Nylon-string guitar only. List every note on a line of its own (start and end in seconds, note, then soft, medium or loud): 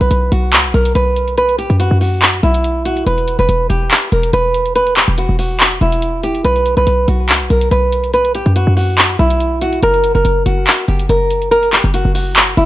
0.01 0.30 B4 medium
0.32 0.71 F#4 medium
0.74 0.92 A#4 medium
0.95 1.35 B4 medium
1.38 1.55 B4 loud
1.58 1.76 G4 loud
1.80 1.97 F#4 medium
2.01 2.41 F#4 medium
2.43 2.83 E4 medium
2.85 3.03 F#4 medium
3.06 3.37 B4 loud
3.39 3.68 B4 medium
3.70 4.09 G4 medium
4.12 4.29 A#4 medium
4.33 4.73 B4 medium
4.76 4.93 B4 loud
4.97 5.14 G4 medium
5.18 5.35 F#4 medium
5.39 5.79 F#4 medium
5.81 6.21 E4 medium
6.24 6.41 G4 medium
6.45 6.75 B4 loud
6.77 7.06 B4 medium
7.08 7.48 F#4 medium
7.50 7.68 A#4 medium
7.71 8.11 B4 medium
8.14 8.31 B4 loud
8.35 8.52 G4 medium
8.56 8.73 F#4 medium
8.77 9.17 F#4 medium
9.19 9.59 E4 medium
9.62 9.79 F#4 medium
9.83 10.13 A#4 loud
10.15 10.44 A#4 medium
10.46 10.86 F#4 medium
10.88 11.05 G4 medium
11.10 11.49 A#4 medium
11.51 11.69 A#4 loud
11.73 11.90 G4 medium
11.94 12.11 F#4 medium
12.15 12.55 F#4 medium
12.57 12.65 E4 medium